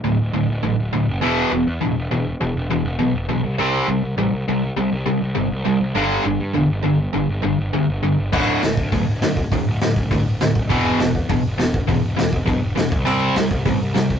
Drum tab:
CC |--------|--------|--------|--------|
HH |--------|--------|--------|--------|
SD |--------|--------|--------|--------|
BD |--------|--------|--------|--------|

CC |--------|--------|--------|x-------|
HH |--------|--------|--------|--o-o-o-|
SD |--------|--------|--------|--o---o-|
BD |--------|--------|--------|o--oo--o|

CC |--------|--------|--------|x-------|
HH |o-o-o-o-|o-o-o-o-|o-o-o-o-|--o-o-o-|
SD |--o---o-|--o---o-|--o---o-|--o---o-|
BD |o--oo--o|o--oo--o|o--oo--o|---oo--o|